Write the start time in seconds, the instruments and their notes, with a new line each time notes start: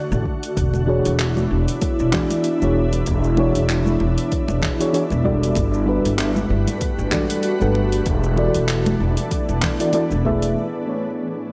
Already playing: ambient pad D3 A3 F#4
0.12 upright bass A1, high conga, shaker
0.26 kick
0.43 open hi-hat, shaker
0.57 upright bass E1, ambient pad B3 D4 E4, kick, open hi-hat, shaker
0.74 muted conga, shaker
0.86 fm electric piano E3 D4 F#4 G#4 C#5
1.05 upright bass E1, open hi-hat, shaker
1.19 clap, open hi-hat, muted conga, shaker
1.37 high conga, shaker
1.50 upright bass E1
1.68 open hi-hat, shaker
1.82 kick, open hi-hat, muted conga, shaker
1.99 upright bass E1, shaker
2.12 fm electric piano E3 D4 F#4 G#4 D5, kick, clap, high conga, low conga
2.30 open hi-hat, muted conga, shaker
2.44 open hi-hat, shaker
2.60 upright bass E1, fm electric piano E3 D4 F#4 G#4 C#5, high conga, shaker
2.93 open hi-hat, muted conga, shaker
3.06 upright bass E1, kick, open hi-hat, shaker
3.24 shaker
3.36 fm electric piano E3 D4 F#4 G#4 C#5, muted conga
3.55 upright bass E1, open hi-hat, shaker
3.69 clap, open hi-hat, shaker
3.86 high conga, shaker
4.00 upright bass E1, muted conga
4.18 open hi-hat, shaker
4.32 kick, open hi-hat, shaker
4.48 upright bass E1, muted conga, shaker
4.62 kick, clap, low conga
4.80 fm electric piano E3 D4 F#4 G#4 C#5, open hi-hat, shaker
4.93 fm electric piano E3 D4 F#4 G#4 C#5, open hi-hat, shaker
5.10 upright bass E1, muted conga, high conga, shaker
5.24 fm electric piano G3 D4 F#4 A4 D5, kick
5.43 open hi-hat, shaker
5.55 upright bass G1, ambient pad G3 A3 F#4 B4, kick, open hi-hat, muted conga, shaker
5.74 shaker
5.86 fm electric piano G3 D4 F#4 A4 B4
6.05 upright bass G1, open hi-hat, shaker
6.18 clap, open hi-hat, muted conga, shaker
6.36 high conga, shaker
6.50 upright bass G1
6.68 open hi-hat, muted conga, shaker
6.81 kick, open hi-hat, shaker
6.98 upright bass G1, shaker
7.11 fm electric piano G3 D4 F#4 A4 D5, kick, clap, high conga, low conga
7.30 open hi-hat, muted conga, shaker
7.43 open hi-hat, shaker
7.60 upright bass G1, fm electric piano G3 D4 F#4 A4 B4, high conga, shaker
7.75 muted conga
7.92 open hi-hat, shaker
8.06 upright bass E1, ambient pad E3 B3 D4, kick, open hi-hat, shaker
8.24 shaker
8.35 fm electric piano E3 E4 F#4 A4 D5, muted conga
8.55 upright bass E1, open hi-hat, shaker
8.69 clap, open hi-hat, shaker
8.86 muted conga, high conga, shaker
9.00 upright bass E1
9.17 open hi-hat, shaker
9.31 kick, open hi-hat, shaker
9.49 upright bass E1, muted conga, shaker
9.62 kick, clap, low conga
9.79 fm electric piano E3 E4 F#4 A4 D5, open hi-hat, shaker
9.93 fm electric piano E3 E4 F#4 A4 D5, open hi-hat, muted conga, shaker
10.11 upright bass E1, high conga, shaker
10.25 fm electric piano A3 E4 G#4 B4 E5, kick
10.42 open hi-hat, shaker
10.55 ambient pad A2 B3 G#4 B4, shaker
10.74 shaker
10.86 fm electric piano A3 E4 G#4 B4 C#5
11.05 shaker
11.19 shaker